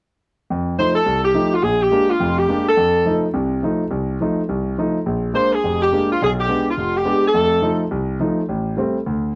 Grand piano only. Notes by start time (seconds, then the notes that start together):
0.50 F2
0.79 F3 A3 D#4
1.06 C2
1.34 F3 A3 D#4
1.63 A#1
1.92 G#3 A#3 D4
2.20 F1 F2
2.49 G#3 A#3 D4
2.77 F2
3.05 F3 A3 D#4
3.34 C2 C3
3.63 F3 A3 D#4
3.91 C2
4.21 F3 A3 D#4
4.49 C2
4.78 F3 A3 D#4
5.06 A#1
5.34 G#3 A#3 D4
5.64 F1 F2
5.92 G#3 A#3 D4
6.22 B1
6.48 G#3 B3 D4
6.77 F1
7.05 G#3 B3 D4
7.34 F2 A3
7.62 F3 A3 D#4
7.91 C2
8.20 F3 A3 D#4
8.49 A1
8.77 G3 A3 C4
9.06 D2